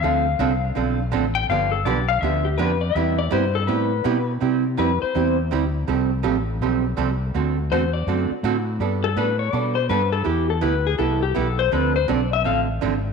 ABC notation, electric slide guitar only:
X:1
M:4/4
L:1/16
Q:"Swing" 1/4=164
K:C
V:1 name="Electric slide guitar"
f12 z2 g2 | f2 A2 d2 f2 e2 G2 B2 d2 | e2 d2 c2 A2 B6- B z | z4 B2 c4 z6 |
z16 | z4 c2 d4 z6 | z2 A2 B2 _d2 =d2 c2 B2 A2 | G2 A2 B2 _A2 =A2 G2 A2 c2 |
B2 c2 d2 e2 f2 z6 |]